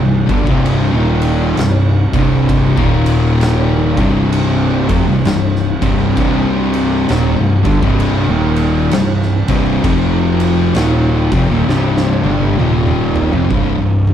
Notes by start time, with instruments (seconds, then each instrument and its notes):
0.00 picked electric bass C1, distorted electric guitar C2 G2
0.26 picked electric bass G1, distorted electric guitar G2 D3, kick, ride
0.44 picked electric bass C1, distorted electric guitar C2 G2 C3, kick
0.48 distorted electric guitar C2 G2
0.66 ride
0.91 picked electric bass D#1, distorted electric guitar D#2 A#2 D#3
0.95 distorted electric guitar D#2 A#2 D#3
1.22 ride
1.56 picked electric bass C1, distorted electric guitar C2 G2, snare, ride
1.60 distorted electric guitar C2
2.13 picked electric bass C1, distorted electric guitar C2 G2 C3, kick, ride
2.49 kick, ride
2.76 picked electric bass D#1, distorted electric guitar D#2 A#2 D#3, kick
3.06 ride
3.41 snare, ride
3.96 picked electric bass C1, distorted electric guitar C2 G2 C3, kick, ride
4.32 ride
4.89 picked electric bass F1, distorted electric guitar F2 C3, kick, ride
5.08 picked electric bass C1, distorted electric guitar C2 G2
5.25 picked electric bass C1, distorted electric guitar C2 G2, snare, ride
5.56 snare
5.81 picked electric bass C1, distorted electric guitar C2 G2 C3, kick, ride
6.15 picked electric bass C1, distorted electric guitar C2 G2 C3, kick, ride
6.74 ride
7.07 picked electric bass D#1, distorted electric guitar D#2 A#2, snare, ride
7.36 picked electric bass C1, distorted electric guitar C2 G2
7.63 picked electric bass G1, distorted electric guitar G2 D3, kick, ride
7.81 picked electric bass C1, distorted electric guitar C2 G2 C3, kick
8.00 ride
8.28 picked electric bass D#1, distorted electric guitar D#2 A#2 D#3
8.56 ride
8.91 picked electric bass C1, distorted electric guitar C2 G2, snare, ride
9.23 snare
9.48 picked electric bass C1, distorted electric guitar C2 G2 C3, kick, ride
9.83 picked electric bass F1, distorted electric guitar F2 C3 F3, kick, ride
10.40 ride
10.75 picked electric bass D#1, distorted electric guitar D#2 A#2 D#3, snare, ride
11.32 picked electric bass F1, distorted electric guitar F2 C3, kick, ride
11.48 picked electric bass D#1, distorted electric guitar D#2 A#2
11.66 picked electric bass C1, distorted electric guitar C2 G2 C3, snare
11.97 snare
12.22 picked electric bass G1, distorted electric guitar G2 D3 G3, high tom
12.41 high tom
12.58 picked electric bass D#1, distorted electric guitar D#2 A#2 D#3, mid tom
12.87 mid tom
13.16 floor tom
13.31 picked electric bass F1, distorted electric guitar F2 C3, floor tom
13.49 picked electric bass C1, distorted electric guitar C2 G2, kick, floor tom
13.77 picked electric bass C1, distorted electric guitar C2 G2
14.07 mid tom